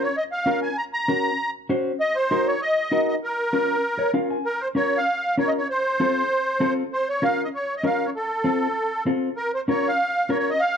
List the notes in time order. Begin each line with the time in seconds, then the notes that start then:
0.03 C#5
0.17 D#5
0.32 F5
0.46 C#4 F4 A#4
0.62 G#5
0.77 A#5
0.93 A#5
1.08 C#4 F#4 A#4
1.69 C#4 F#4 C5
2.00 D#5
2.16 C5
2.31 D#4 F#4 A#4
2.47 C#5
2.62 D#5
2.92 D#4 F#4 A#4
3.08 D#5
3.24 A#4
3.53 C#4 F4 A#4
3.99 C#5
4.14 C#4 F4 A#4 F5
4.30 G#5
4.46 A#4
4.61 C5
4.75 C#4 F4 A#4 C#5
4.97 F5
5.38 C#4 F4 A#4 C#5
5.48 D#5
5.58 C#5
5.70 C5
6.00 C4 F4 A4
6.60 C4 F4 A4
6.93 C5
7.09 C#5
7.22 C#4 F4 A#4 F5
7.44 D#5
7.55 C#5
7.77 D#5
7.83 C#4 F4 A#4 F5
8.06 C#5
8.16 A4
8.44 C4 F4 A4
9.06 C4 F4 A4
9.37 A#4
9.54 C5
9.68 C#4 F4 A#4 C#5
9.88 F5
10.29 C#4 F4 A#4 C#5
10.39 C#5
10.50 D#5
10.59 F5